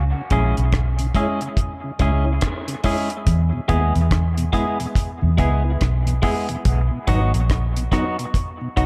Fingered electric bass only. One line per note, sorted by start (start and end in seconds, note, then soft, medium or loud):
0.00 0.12 C#2 loud
0.31 0.54 A#1 loud
0.58 1.10 B1 medium
2.00 2.38 C#2 medium
3.27 3.50 E2 loud
3.70 3.93 D#2 loud
3.96 4.48 E2 medium
5.23 5.37 E2 medium
5.39 5.77 C#2 medium
5.82 6.19 B1 medium
6.66 6.89 B1 loud
7.08 7.31 G#1 medium
7.34 7.87 A#1 medium
8.77 8.86 B1 medium